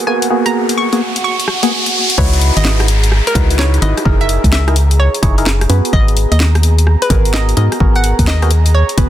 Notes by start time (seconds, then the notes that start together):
Already playing: F#4 F#5, riser
0.07 A#3 B3 F#4 G#4 G#5
0.22 closed hi-hat
0.30 A#3 B3 F#4 G#4
0.46 A#5, cross-stick, closed hi-hat
0.69 closed hi-hat
0.78 C#6
0.93 A#3 B3 F#4 G#4, closed hi-hat
1.16 closed hi-hat
1.24 C#6
1.40 closed hi-hat
1.48 cross-stick
1.63 A#3 B3 F#4 G#4, closed hi-hat
1.86 closed hi-hat
2.10 closed hi-hat
2.18 C#2 D#4 E4 F#4 G#4 B4 C#5 A#5, kick, crash, downlifter
2.33 open hi-hat
2.41 open hi-hat
2.57 G#1 D#5, closed hi-hat
2.65 snare
2.80 cross-stick, closed hi-hat
2.88 open hi-hat
3.04 closed hi-hat
3.12 cross-stick
3.27 A#4, closed hi-hat
3.35 C#2 D#4 E4 F#4 B4, kick, open hi-hat
3.50 closed hi-hat
3.59 C#5, snare
3.74 closed hi-hat
3.82 G#1 D#4 E4 F#4 B4 D#5, open hi-hat
3.98 cross-stick, closed hi-hat
4.05 F#1 D#4 E4 G#4 A#4, kick
4.21 E5, closed hi-hat
4.29 open hi-hat
4.44 C#2, kick, closed hi-hat
4.52 E5, snare
4.67 D#4 E4 G#4 A#4, cross-stick, closed hi-hat
4.76 open hi-hat
4.91 closed hi-hat
5.00 C#5
5.15 closed hi-hat
5.23 F#1 D#4 E4 G#4 C#5, kick, open hi-hat
5.38 D#4 E4 G#4 A#4, closed hi-hat
5.46 snare
5.61 cross-stick, closed hi-hat
5.70 F#2 B3 F#4 G#4 B4, open hi-hat
5.85 closed hi-hat
5.93 G#1 D#5, kick
6.08 open hi-hat
6.17 open hi-hat
6.32 D#2 D#5, closed hi-hat
6.40 snare
6.55 cross-stick, closed hi-hat
6.63 open hi-hat
6.79 closed hi-hat
6.87 cross-stick
7.02 B4, closed hi-hat
7.10 G#1 B3 F#4 G#4 A#4, kick, open hi-hat
7.25 closed hi-hat
7.34 D#5, snare
7.49 closed hi-hat
7.57 G#2 B3 F#4 G#4 A#4 D#5, open hi-hat
7.72 cross-stick, closed hi-hat
7.80 G#1 B3 F#4 G#4 A#4, kick
7.96 F#5, closed hi-hat
8.04 open hi-hat
8.19 D#2, kick, closed hi-hat
8.27 D#5, snare
8.42 B3 F#4 G#4 A#4, cross-stick, closed hi-hat
8.51 open hi-hat
8.66 closed hi-hat
8.75 C#5
8.89 closed hi-hat
8.98 F#1 B3 F#4 G#4 B4, kick, open hi-hat